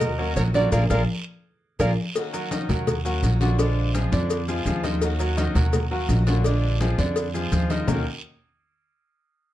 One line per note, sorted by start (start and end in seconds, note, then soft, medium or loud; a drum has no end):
0.00 0.33 D#2 medium
0.00 0.12 F#3 medium
0.00 0.12 F#4 medium
0.00 0.12 A#4 medium
0.00 0.33 A#4 medium
0.00 0.36 D#5 loud
0.00 muted steel-string acoustic guitar stroke medium
0.00 cowbell loud
0.00 high conga soft
0.00 low conga medium
0.00 long guiro medium
0.00 maracas medium
0.18 0.48 F#3 medium
0.18 0.36 A#3 medium
0.18 0.36 C#4 medium
0.18 0.36 F#4 medium
0.18 0.48 F#4 medium
0.18 0.48 A#4 medium
0.18 high conga soft
0.36 0.70 A#1 loud
0.36 0.54 D#3 medium
0.36 0.54 A#3 soft
0.36 0.54 C#4 soft
0.36 0.53 F#4 medium
0.36 0.42 A#4 medium
0.36 0.42 C#5 loud
0.36 cowbell medium
0.36 high conga medium
0.36 short guiro medium
0.36 maracas medium
0.54 0.69 D3 medium
0.54 0.72 A#3 medium
0.54 0.72 C#4 medium
0.54 0.69 D4 medium
0.54 0.72 F#4 medium
0.54 0.71 A#4 medium
0.54 0.69 D5 medium
0.54 0.71 D5 medium
0.54 cowbell medium
0.54 high conga medium
0.54 short guiro medium
0.54 maracas soft
0.72 0.86 A#1 loud
0.72 0.84 A#3 medium
0.72 0.84 D4 medium
0.72 0.84 F4 medium
0.72 0.84 G#4 loud
0.72 0.84 A#4 loud
0.72 0.84 A#4 medium
0.72 0.84 D5 medium
0.72 0.84 F5 medium
0.72 cowbell loud
0.72 high conga loud
0.72 long guiro loud
0.72 maracas loud
0.90 1.03 A#1 loud
0.90 1.02 A#3 medium
0.90 1.02 D4 medium
0.90 1.02 F4 loud
0.90 1.02 F4 medium
0.90 1.02 G#4 loud
0.90 1.01 A#4 loud
0.90 1.02 A#4 loud
0.90 1.02 D5 medium
0.90 1.02 F5 loud
0.90 cowbell loud
0.90 high conga loud
0.90 long guiro loud
0.90 maracas loud
1.79 1.93 A#1 loud
1.79 1.91 A#3 loud
1.79 1.91 D4 loud
1.79 1.91 F4 medium
1.79 1.91 G#4 loud
1.79 1.91 A#4 loud
1.79 1.92 A#4 medium
1.79 1.92 D5 medium
1.79 1.92 F5 medium
1.79 cowbell loud
1.79 high conga loud
1.79 long guiro loud
1.79 maracas medium
2.15 2.50 D#3 medium
2.15 2.51 A#3 medium
2.15 2.51 C#4 medium
2.15 2.52 F#4 medium
2.15 cowbell loud
2.15 high conga soft
2.15 long guiro medium
2.15 maracas medium
2.33 2.48 F#3 medium
2.33 2.48 F#4 medium
2.33 2.48 A#4 medium
2.33 cowbell medium
2.33 high conga soft
2.33 maracas medium
2.51 2.86 D#3 soft
2.51 2.66 D#3 medium
2.51 2.86 A#3 medium
2.51 2.87 C#4 medium
2.51 2.66 D#4 medium
2.51 2.87 F#4 medium
2.51 2.66 D#5 medium
2.51 cowbell medium
2.51 high conga medium
2.51 short guiro medium
2.51 maracas medium
2.69 3.19 D#2 loud
2.69 2.98 F#3 medium
2.69 2.99 F#4 medium
2.69 2.99 A#4 medium
2.69 cowbell medium
2.69 high conga soft
2.69 low conga medium
2.69 short guiro medium
2.69 maracas soft
2.87 muted steel-string acoustic guitar stroke medium
2.87 cowbell loud
2.87 high conga soft
2.87 low conga medium
2.87 long guiro medium
2.87 maracas medium
3.05 3.34 F#3 medium
3.05 3.22 A#3 medium
3.05 3.23 C#4 medium
3.05 3.22 F#4 medium
3.05 3.35 F#4 medium
3.05 3.35 A#4 medium
3.05 high conga soft
3.05 maracas medium
3.22 4.06 A#1 medium
3.22 3.40 D#3 medium
3.22 3.40 A#3 medium
3.22 3.40 C#4 medium
3.22 3.39 F#4 medium
3.22 cowbell medium
3.22 high conga medium
3.22 short guiro medium
3.22 maracas medium
3.41 3.55 D3 medium
3.41 3.59 A#3 medium
3.41 3.58 C#4 medium
3.41 3.56 D4 medium
3.41 3.58 F#4 medium
3.41 3.56 D5 medium
3.41 cowbell medium
3.41 high conga medium
3.41 short guiro medium
3.41 maracas soft
3.59 3.88 D3 medium
3.59 3.93 F3 medium
3.59 3.94 G#3 medium
3.59 3.88 D4 medium
3.59 3.95 D4 medium
3.59 3.95 F4 medium
3.59 3.88 D5 medium
3.59 cowbell loud
3.59 high conga soft
3.59 long guiro medium
3.59 maracas medium
3.77 high conga soft
3.94 4.09 F3 medium
3.94 4.29 F3 medium
3.94 4.29 G#3 soft
3.94 4.30 D4 medium
3.94 4.09 F4 medium
3.94 4.30 F4 medium
3.94 4.09 G#4 medium
3.94 cowbell medium
3.94 high conga loud
3.94 short guiro medium
3.94 maracas medium
4.12 4.62 F2 loud
4.12 4.42 D3 medium
4.12 4.42 D4 loud
4.12 4.42 D5 medium
4.12 high conga medium
4.12 short guiro medium
4.12 maracas soft
4.30 muted steel-string acoustic guitar stroke medium
4.30 cowbell loud
4.30 high conga soft
4.30 long guiro medium
4.30 maracas medium
4.48 4.63 F3 medium
4.48 4.65 G#3 medium
4.48 4.66 D4 medium
4.48 4.65 F4 medium
4.48 4.63 F4 medium
4.48 4.63 G#4 medium
4.48 high conga soft
4.48 maracas medium
4.65 5.49 D#2 medium
4.65 4.83 F3 medium
4.65 4.81 F3 medium
4.65 4.83 G#3 medium
4.65 4.83 D4 medium
4.65 4.81 F4 medium
4.65 4.82 F4 medium
4.65 4.81 G#4 medium
4.65 cowbell medium
4.65 high conga medium
4.65 short guiro medium
4.65 maracas medium
4.84 5.13 D#3 medium
4.84 5.02 G#3 medium
4.84 5.01 D4 medium
4.84 5.13 D#4 medium
4.84 5.01 F4 medium
4.84 5.13 D#5 medium
4.84 cowbell medium
4.84 high conga medium
4.84 short guiro medium
4.84 maracas soft
5.01 5.36 D#3 medium
5.01 5.37 A#3 medium
5.01 5.37 C#4 medium
5.01 5.38 F#4 medium
5.01 cowbell loud
5.01 high conga soft
5.01 long guiro medium
5.01 maracas medium
5.19 5.34 F#3 medium
5.19 5.35 F#4 medium
5.19 5.35 A#4 medium
5.19 cowbell medium
5.19 high conga soft
5.19 maracas medium
5.37 5.52 D#3 medium
5.37 5.72 D#3 medium
5.37 5.73 A#3 medium
5.37 5.73 C#4 medium
5.37 5.52 D#4 medium
5.37 5.73 F#4 medium
5.37 5.52 D#5 medium
5.37 cowbell medium
5.37 high conga loud
5.37 short guiro medium
5.37 maracas medium
5.55 6.05 D#2 loud
5.55 5.85 F#3 medium
5.55 5.85 F#4 medium
5.55 5.85 A#4 medium
5.55 cowbell medium
5.55 high conga soft
5.55 low conga medium
5.55 short guiro medium
5.55 maracas soft
5.73 muted steel-string acoustic guitar stroke medium
5.73 cowbell loud
5.73 high conga soft
5.73 low conga medium
5.73 long guiro medium
5.73 maracas medium
5.91 6.21 F#3 medium
5.91 6.09 A#3 medium
5.91 6.09 C#4 medium
5.91 6.08 F#4 medium
5.91 6.21 F#4 medium
5.91 6.21 A#4 medium
5.91 high conga soft
6.09 6.93 A#1 loud
6.09 6.27 D#3 medium
6.09 6.27 A#3 soft
6.09 6.27 C#4 medium
6.09 6.26 F#4 medium
6.09 cowbell medium
6.09 high conga medium
6.09 short guiro medium
6.09 maracas medium
6.27 6.42 D3 medium
6.27 6.45 A#3 medium
6.27 6.45 C#4 medium
6.27 6.42 D4 medium
6.27 6.44 F#4 medium
6.27 6.42 D5 medium
6.27 cowbell medium
6.27 high conga medium
6.27 short guiro medium
6.27 maracas soft
6.44 6.74 D3 medium
6.44 6.79 F3 medium
6.44 6.80 G#3 medium
6.44 6.74 D4 medium
6.44 6.80 D4 medium
6.44 6.81 F4 medium
6.44 6.75 D5 medium
6.44 cowbell loud
6.44 long guiro medium
6.44 maracas medium
6.63 high conga soft
6.80 7.15 F3 soft
6.80 6.95 F3 medium
6.80 7.16 G#3 medium
6.80 7.16 D4 medium
6.80 6.96 F4 medium
6.80 7.16 F4 medium
6.80 6.96 G#4 medium
6.80 cowbell medium
6.80 high conga medium
6.80 short guiro medium
6.80 maracas medium
6.98 7.48 F2 medium
6.98 7.28 D3 medium
6.98 7.28 D4 medium
6.98 7.28 D5 medium
6.98 high conga medium
6.98 short guiro medium
6.98 maracas soft
7.16 muted steel-string acoustic guitar stroke medium
7.16 cowbell loud
7.16 high conga soft
7.16 long guiro medium
7.16 maracas medium
7.34 7.49 F3 medium
7.34 7.51 G#3 medium
7.34 7.52 D4 medium
7.34 7.51 F4 medium
7.34 7.49 F4 medium
7.34 7.49 G#4 medium
7.34 high conga soft
7.34 maracas medium
7.51 7.84 D#2 medium
7.51 7.69 F3 soft
7.51 7.67 F3 medium
7.51 7.70 G#3 medium
7.51 7.70 D4 medium
7.51 7.67 F4 medium
7.51 7.68 F4 medium
7.51 7.67 G#4 medium
7.51 cowbell medium
7.51 high conga medium
7.51 short guiro medium
7.51 maracas medium
7.70 7.85 D#3 medium
7.70 7.88 G#3 soft
7.70 7.88 D4 medium
7.70 7.85 D#4 medium
7.70 7.87 F4 medium
7.70 7.85 D#5 medium
7.70 cowbell medium
7.70 high conga loud
7.70 short guiro medium
7.70 maracas soft
7.87 8.05 D#2 medium
7.87 8.02 D#3 medium
7.87 8.04 D#3 medium
7.87 8.04 A#3 medium
7.87 8.02 A#3 medium
7.87 8.05 C#4 medium
7.87 8.03 C#4 medium
7.87 8.05 D#4 medium
7.87 8.05 F#4 medium
7.87 8.03 F#4 medium
7.87 8.05 A#4 loud
7.87 low bongo loud
7.87 low conga loud
7.87 long guiro medium
7.87 maracas loud